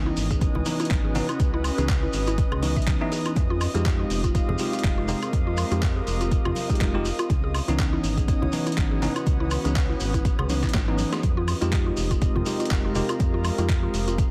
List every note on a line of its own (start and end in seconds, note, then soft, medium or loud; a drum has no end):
0.00 0.11 C#2 loud
0.00 0.63 E3 medium
0.00 0.63 B3 medium
0.00 0.63 C#4 medium
0.00 3.33 C#4 medium
0.00 3.36 C#4 medium
0.00 0.64 D#4 loud
0.00 3.36 F#4 medium
0.00 3.33 B4 medium
0.00 9.23 D#5 medium
0.00 14.31 D#6 medium
0.06 0.09 E4 loud
0.17 0.48 G#1 medium
0.17 3.37 B4 medium
0.17 open hi-hat loud
0.17 shekere medium
0.31 0.39 G#4 medium
0.31 kick medium
0.31 closed hi-hat medium
0.31 shekere medium
0.41 kick loud
0.41 closed hi-hat medium
0.41 shekere soft
0.55 0.62 C#2 medium
0.55 0.59 E4 medium
0.55 low conga medium
0.65 1.12 E3 medium
0.65 1.13 B3 medium
0.65 1.13 C#4 medium
0.65 1.13 D#4 medium
0.65 open hi-hat loud
0.65 high conga medium
0.65 shekere loud
0.80 0.83 E4 loud
0.80 closed hi-hat soft
0.80 shekere medium
0.85 closed hi-hat medium
0.91 1.21 G#1 medium
0.91 kick loud
0.91 clap loud
0.91 closed hi-hat medium
0.91 high conga loud
0.91 shekere soft
1.04 1.13 G#4 medium
1.15 1.26 E3 medium
1.15 1.26 B3 medium
1.15 1.26 C#4 medium
1.15 1.26 D#4 loud
1.15 open hi-hat loud
1.15 low conga medium
1.15 shekere medium
1.29 1.32 E4 medium
1.29 closed hi-hat medium
1.29 high woodblock medium
1.29 shekere medium
1.39 1.71 C#2 loud
1.39 kick loud
1.39 closed hi-hat medium
1.39 high conga medium
1.39 shekere soft
1.54 1.57 E4 loud
1.64 open hi-hat loud
1.64 high woodblock medium
1.64 shekere medium
1.78 2.08 C#2 loud
1.78 1.86 E3 medium
1.78 1.86 B3 medium
1.78 1.86 C#4 medium
1.78 1.86 D#4 medium
1.78 1.86 G#4 medium
1.78 closed hi-hat medium
1.78 shekere medium
1.89 kick loud
1.89 clap loud
1.89 closed hi-hat medium
1.89 shekere soft
2.03 2.06 E4 medium
2.13 2.44 G#1 medium
2.13 open hi-hat medium
2.13 shekere loud
2.27 2.31 E4 loud
2.27 closed hi-hat soft
2.27 shekere medium
2.38 kick loud
2.38 closed hi-hat medium
2.38 shekere soft
2.52 2.81 C#2 medium
2.52 2.60 G#4 medium
2.52 low conga medium
2.52 high woodblock medium
2.62 2.98 E3 medium
2.62 2.98 B3 medium
2.62 2.98 C#4 medium
2.62 2.98 D#4 medium
2.62 open hi-hat loud
2.62 high conga medium
2.62 shekere loud
2.76 2.82 E5 medium
2.76 kick medium
2.76 closed hi-hat soft
2.76 shekere medium
2.82 closed hi-hat medium
2.87 2.96 C#2 medium
2.87 kick loud
2.87 clap loud
2.87 closed hi-hat medium
2.87 high conga loud
2.87 shekere soft
3.01 3.35 E3 medium
3.01 3.35 B3 medium
3.01 3.35 C#4 medium
3.01 3.35 D#4 loud
3.01 3.04 E5 loud
3.12 3.19 G#4 medium
3.12 open hi-hat loud
3.12 shekere medium
3.25 3.31 E4 medium
3.25 closed hi-hat medium
3.25 high woodblock medium
3.25 shekere medium
3.36 3.67 F2 loud
3.36 7.26 G#3 medium
3.36 7.30 C4 medium
3.36 7.26 G4 medium
3.36 7.26 F5 loud
3.36 kick loud
3.36 closed hi-hat medium
3.36 high conga medium
3.36 shekere soft
3.49 7.30 F4 medium
3.49 3.54 F4 loud
3.61 open hi-hat loud
3.61 high woodblock medium
3.61 shekere loud
3.74 4.04 F2 medium
3.74 4.57 G#3 medium
3.74 4.57 D#4 medium
3.74 4.57 F4 medium
3.74 4.57 G4 loud
3.74 3.83 G#4 medium
3.74 closed hi-hat medium
3.74 shekere medium
3.86 kick loud
3.86 clap loud
3.86 closed hi-hat medium
3.99 4.03 F4 medium
4.10 4.41 F1 medium
4.10 open hi-hat loud
4.10 shekere loud
4.24 4.27 F4 loud
4.24 kick medium
4.24 closed hi-hat medium
4.24 shekere medium
4.28 7.30 A#4 medium
4.35 kick loud
4.35 closed hi-hat medium
4.35 shekere soft
4.48 4.56 F2 medium
4.48 4.57 G#4 medium
4.48 low conga medium
4.58 5.06 G#3 medium
4.58 5.06 D#4 medium
4.58 5.06 F4 medium
4.58 5.06 G4 medium
4.58 open hi-hat loud
4.58 high conga medium
4.58 shekere medium
4.73 4.77 F4 medium
4.73 closed hi-hat soft
4.73 shekere medium
4.79 closed hi-hat medium
4.84 5.15 F1 medium
4.84 kick loud
4.84 clap loud
4.84 closed hi-hat medium
4.84 high conga medium
4.84 shekere soft
4.98 5.01 F4 loud
5.08 5.19 G#3 medium
5.08 5.19 D#4 medium
5.08 5.19 F4 medium
5.08 5.19 G4 loud
5.08 open hi-hat medium
5.08 low conga medium
5.08 shekere medium
5.22 5.31 G#4 medium
5.22 closed hi-hat soft
5.22 high woodblock medium
5.22 shekere soft
5.33 5.64 F2 loud
5.33 kick loud
5.33 closed hi-hat medium
5.33 high conga medium
5.33 shekere soft
5.47 5.50 F4 medium
5.57 open hi-hat loud
5.57 high woodblock medium
5.57 shekere loud
5.71 6.01 F2 medium
5.71 5.80 G#3 medium
5.71 5.80 D#4 medium
5.71 5.75 F4 loud
5.71 5.80 F4 medium
5.71 5.80 G4 medium
5.71 closed hi-hat medium
5.71 shekere soft
5.82 kick loud
5.82 clap loud
5.82 closed hi-hat medium
5.82 shekere soft
5.96 6.04 G#4 medium
6.07 6.38 F1 medium
6.07 open hi-hat medium
6.07 shekere medium
6.21 6.24 F4 medium
6.21 closed hi-hat medium
6.21 shekere medium
6.31 kick loud
6.31 closed hi-hat medium
6.31 shekere soft
6.45 6.52 F2 medium
6.45 6.49 F4 loud
6.45 low conga medium
6.45 high woodblock medium
6.55 open hi-hat loud
6.55 high conga medium
6.55 shekere medium
6.70 6.91 G#3 medium
6.70 6.91 D#4 medium
6.70 6.91 F4 medium
6.70 6.91 G4 medium
6.70 6.78 G#4 medium
6.70 kick medium
6.70 closed hi-hat soft
6.70 shekere medium
6.75 closed hi-hat medium
6.81 7.12 F1 medium
6.81 kick loud
6.81 clap loud
6.81 closed hi-hat medium
6.81 high conga loud
6.81 shekere soft
6.94 7.08 G#3 loud
6.94 7.08 D#4 medium
6.94 6.98 F4 medium
6.94 7.08 F4 medium
6.94 7.08 G4 loud
7.05 open hi-hat medium
7.05 shekere loud
7.19 7.22 F4 loud
7.19 closed hi-hat medium
7.19 high woodblock medium
7.19 shekere medium
7.30 7.61 C#2 medium
7.30 11.19 E3 medium
7.30 11.19 B3 medium
7.30 11.23 C#4 loud
7.30 11.19 C#5 medium
7.30 kick loud
7.30 closed hi-hat medium
7.30 high conga medium
7.30 shekere soft
7.44 7.52 G#4 medium
7.54 open hi-hat loud
7.54 high woodblock medium
7.54 shekere loud
7.68 7.98 C#2 loud
7.68 8.50 E3 medium
7.68 8.50 B3 medium
7.68 8.50 C#4 medium
7.68 8.51 D#4 loud
7.68 7.72 E4 medium
7.68 11.23 F#4 medium
7.68 closed hi-hat medium
7.68 shekere medium
7.79 kick loud
7.79 clap loud
7.79 closed hi-hat medium
7.79 shekere soft
7.93 7.96 E4 loud
7.97 11.23 B4 medium
8.04 8.35 G#1 medium
8.04 open hi-hat medium
8.04 shekere medium
8.17 8.26 G#4 medium
8.17 kick medium
8.17 closed hi-hat medium
8.17 shekere soft
8.28 kick loud
8.28 closed hi-hat medium
8.28 shekere soft
8.42 8.49 C#2 medium
8.42 8.45 E4 medium
8.42 low conga loud
8.52 8.99 E3 medium
8.52 8.99 B3 medium
8.52 9.00 C#4 medium
8.52 9.00 D#4 medium
8.52 open hi-hat loud
8.52 high conga medium
8.52 shekere medium
8.66 8.70 E4 loud
8.66 closed hi-hat medium
8.66 shekere soft
8.72 closed hi-hat medium
8.77 9.08 G#1 medium
8.77 kick loud
8.77 clap loud
8.77 closed hi-hat medium
8.77 high conga medium
8.77 shekere soft
8.91 8.99 G#4 medium
9.02 9.12 E3 medium
9.02 9.12 B3 medium
9.02 9.13 C#4 medium
9.02 9.13 D#4 loud
9.02 open hi-hat medium
9.02 low conga medium
9.02 shekere medium
9.16 9.19 E4 medium
9.16 closed hi-hat medium
9.16 high woodblock medium
9.16 shekere soft
9.26 9.57 C#2 loud
9.26 11.21 D#6 medium
9.26 kick loud
9.26 closed hi-hat medium
9.26 high conga medium
9.26 shekere soft
9.40 9.44 E4 loud
9.51 open hi-hat loud
9.51 high woodblock medium
9.51 shekere loud
9.65 9.95 C#2 medium
9.65 9.73 E3 medium
9.65 9.73 B3 medium
9.65 9.73 C#4 medium
9.65 9.73 D#4 medium
9.65 9.73 G#4 medium
9.65 closed hi-hat medium
9.65 shekere medium
9.76 kick loud
9.76 clap loud
9.76 closed hi-hat medium
9.89 9.93 E4 medium
10.00 10.31 G#1 medium
10.00 open hi-hat medium
10.00 shekere loud
10.14 10.17 E4 loud
10.14 kick medium
10.14 closed hi-hat medium
10.14 shekere soft
10.25 kick loud
10.25 closed hi-hat medium
10.25 shekere soft
10.39 10.68 C#2 medium
10.39 10.47 G#4 medium
10.39 low conga medium
10.39 high woodblock medium
10.49 10.85 E3 medium
10.49 10.85 B3 medium
10.49 10.85 C#4 medium
10.49 10.85 D#4 medium
10.49 open hi-hat loud
10.49 high conga medium
10.49 shekere loud
10.63 10.67 E4 medium
10.63 kick medium
10.63 clap soft
10.63 closed hi-hat medium
10.63 shekere soft
10.69 closed hi-hat medium
10.74 11.05 G#1 loud
10.74 kick loud
10.74 snare loud
10.74 clap loud
10.74 closed hi-hat medium
10.74 high conga medium
10.88 11.22 E3 medium
10.88 11.22 B3 medium
10.88 11.22 C#4 medium
10.88 11.22 D#4 loud
10.88 10.91 E4 loud
10.98 open hi-hat medium
10.98 high conga medium
10.98 shekere medium
11.12 11.21 G#4 medium
11.12 snare medium
11.12 closed hi-hat medium
11.12 high woodblock medium
11.12 shekere soft
11.23 11.54 F2 loud
11.23 14.31 G#3 medium
11.23 14.31 C4 medium
11.23 14.31 F4 medium
11.23 14.31 G4 medium
11.23 13.18 D#5 medium
11.23 kick loud
11.23 closed hi-hat medium
11.23 high conga medium
11.23 shekere soft
11.37 11.40 F4 loud
11.48 open hi-hat loud
11.48 high woodblock medium
11.48 shekere medium
11.61 11.91 F2 loud
11.61 12.43 G#3 medium
11.61 12.44 D#4 medium
11.61 11.67 F4 medium
11.61 12.44 F4 medium
11.61 12.44 G4 loud
11.61 closed hi-hat medium
11.61 shekere medium
11.69 14.31 A#4 medium
11.69 kick loud
11.69 clap loud
11.69 closed hi-hat medium
11.69 shekere soft
11.79 14.31 F4 medium
11.86 11.90 F4 medium
11.97 12.28 F1 medium
11.97 open hi-hat medium
11.97 shekere loud
12.11 12.14 F4 loud
12.11 kick medium
12.11 closed hi-hat medium
12.11 shekere medium
12.21 kick loud
12.21 closed hi-hat medium
12.21 shekere soft
12.35 12.43 F2 medium
12.35 12.41 F4 medium
12.35 low conga loud
12.46 12.93 G#3 medium
12.46 12.93 D#4 medium
12.46 12.93 F4 medium
12.46 12.93 G4 medium
12.46 open hi-hat loud
12.46 high conga medium
12.46 shekere medium
12.60 12.63 F4 medium
12.60 closed hi-hat soft
12.60 shekere medium
12.65 closed hi-hat medium
12.71 13.02 F1 medium
12.71 kick loud
12.71 clap loud
12.71 high conga medium
12.71 shekere soft
12.85 12.88 F4 loud
12.95 13.06 G#3 medium
12.95 13.06 D#4 medium
12.95 13.06 F4 medium
12.95 13.06 G4 loud
12.95 open hi-hat medium
12.95 low conga medium
12.95 shekere medium
13.09 13.15 F4 medium
13.09 closed hi-hat medium
13.09 high woodblock medium
13.09 shekere medium
13.19 13.51 F2 loud
13.19 14.31 F5 medium
13.19 kick loud
13.19 closed hi-hat medium
13.19 high conga medium
13.19 shekere soft
13.34 13.37 F4 medium
13.44 open hi-hat loud
13.44 high woodblock medium
13.44 shekere loud
13.58 13.88 F2 loud
13.58 13.67 G#3 medium
13.58 13.67 D#4 medium
13.58 13.62 F4 loud
13.58 13.67 F4 medium
13.58 13.67 G4 medium
13.58 closed hi-hat medium
13.58 shekere medium
13.69 kick loud
13.69 clap loud
13.69 closed hi-hat medium
13.69 shekere soft
13.83 13.89 F4 medium
13.94 14.25 F1 medium
13.94 open hi-hat loud
13.94 shekere medium
14.08 14.11 F4 medium
14.08 closed hi-hat medium
14.08 shekere medium
14.18 kick loud
14.18 closed hi-hat medium
14.18 shekere soft